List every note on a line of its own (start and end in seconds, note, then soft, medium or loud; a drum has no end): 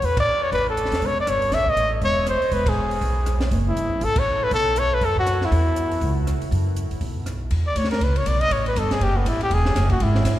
0.02 0.50 E2 medium
0.02 0.18 B4 medium
0.02 kick soft
0.02 open hi-hat soft
0.17 0.45 D5 medium
0.17 kick medium
0.17 ride medium
0.43 0.53 C#5 medium
0.52 0.89 A1 medium
0.52 0.66 B4 medium
0.52 kick soft
0.52 open hi-hat soft
0.70 1.08 A4 medium
0.77 closed hi-hat soft
0.85 snare soft
0.91 1.01 E2 medium
0.91 snare soft
0.91 open hi-hat soft
1.02 1.25 E1 medium
1.02 kick soft
1.02 open hi-hat soft
1.06 1.19 C#5 medium
1.20 1.31 D5 medium
1.26 1.50 G1 medium
1.26 1.56 C#5 medium
1.26 cross-stick soft
1.26 closed hi-hat soft
1.42 open hi-hat soft
1.52 1.75 A#1 medium
1.52 1.71 E5 medium
1.52 kick soft
1.52 snare soft
1.52 open hi-hat soft
1.66 1.93 D#5 loud
1.66 kick soft
1.76 2.00 A1 medium
1.76 closed hi-hat soft
2.02 2.39 E1 medium
2.02 2.26 C#5 medium
2.02 kick soft
2.02 open hi-hat soft
2.26 2.55 C5 medium
2.26 cross-stick medium
2.26 closed hi-hat soft
2.41 muted upright bass stroke soft
2.41 open hi-hat soft
2.52 2.99 E1 medium
2.52 2.70 B4 medium
2.52 kick soft
2.52 open hi-hat soft
2.66 3.42 G#4 medium
2.66 kick medium
2.66 ride medium
2.91 open hi-hat soft
3.01 3.49 B1 medium
3.01 kick soft
3.01 open hi-hat soft
3.26 cross-stick medium
3.26 closed hi-hat medium
3.40 snare soft
3.40 open hi-hat soft
3.51 3.75 F#1 medium
3.51 kick soft
3.51 open hi-hat soft
3.69 4.06 E4 medium
3.77 4.00 G1 medium
3.77 closed hi-hat soft
4.01 4.49 A1 medium
4.01 4.20 A4 loud
4.01 kick soft
4.01 open hi-hat soft
4.16 4.45 C#5 medium
4.16 kick medium
4.16 ride medium
4.43 4.53 B4 loud
4.51 4.99 B1 medium
4.51 4.80 A4 loud
4.51 kick soft
4.51 open hi-hat soft
4.76 4.95 C#5 medium
4.76 closed hi-hat soft
4.94 5.06 B4 medium
5.01 5.49 F#2 medium
5.01 5.18 A4 medium
5.01 kick soft
5.01 open hi-hat soft
5.16 5.47 F#4 medium
5.16 kick soft
5.26 cross-stick medium
5.26 closed hi-hat soft
5.41 6.18 E4 medium
5.41 snare soft
5.51 5.99 E2 medium
5.51 kick soft
5.51 open hi-hat soft
5.76 closed hi-hat soft
5.91 open hi-hat soft
6.01 6.38 C#2 medium
6.01 kick soft
6.01 open hi-hat soft
6.27 cross-stick medium
6.27 closed hi-hat soft
6.41 muted upright bass stroke soft
6.41 open hi-hat soft
6.51 6.88 F#2 medium
6.51 kick soft
6.51 open hi-hat soft
6.76 closed hi-hat soft
6.90 muted upright bass stroke soft
6.90 open hi-hat soft
7.01 7.48 B1 medium
7.01 kick soft
7.01 open hi-hat soft
7.26 cross-stick medium
7.26 closed hi-hat soft
7.51 7.75 E2 medium
7.51 kick soft
7.51 ride medium
7.67 7.79 D5 medium
7.76 8.00 D2 medium
7.76 7.90 C#5 medium
7.76 kick soft
7.76 hi-hat pedal soft
7.76 ride medium
7.84 snare soft
7.91 8.05 A#4 medium
7.91 snare soft
7.91 ride soft
8.01 8.25 C#2 medium
8.01 8.19 B4 medium
8.01 kick soft
8.01 ride soft
8.16 8.29 C#5 medium
8.16 ride soft
8.26 8.50 B1 medium
8.26 8.42 D5 medium
8.26 kick soft
8.26 hi-hat pedal soft
8.26 ride medium
8.41 8.54 D#5 loud
8.41 ride soft
8.51 8.75 A1 medium
8.51 8.66 C#5 medium
8.51 kick soft
8.51 ride medium
8.66 8.80 B4 medium
8.66 ride soft
8.76 9.00 G1 medium
8.76 8.94 A4 medium
8.76 kick soft
8.76 hi-hat pedal soft
8.76 ride medium
8.91 9.05 G#4 medium
8.91 snare soft
8.91 ride soft
9.00 9.25 F#1 medium
9.00 9.19 G4 medium
9.00 kick soft
9.00 ride medium
9.17 9.30 B3 medium
9.25 9.49 A1 medium
9.25 9.41 E4 medium
9.25 kick soft
9.25 hi-hat pedal soft
9.25 ride medium
9.41 9.55 G4 medium
9.41 ride soft
9.50 9.74 E1 medium
9.50 9.91 G#4 medium
9.50 kick soft
9.50 ride medium
9.65 snare soft
9.75 9.99 F#1 medium
9.75 kick soft
9.75 snare soft
9.75 hi-hat pedal soft
9.75 ride medium
9.90 10.04 F#4 medium
9.90 kick medium
9.90 ride soft
10.00 10.24 G#1 medium
10.00 10.39 E4 medium
10.00 kick soft
10.00 ride medium
10.15 snare soft
10.25 10.39 A1 medium
10.25 kick soft
10.25 snare soft
10.25 hi-hat pedal medium
10.25 ride medium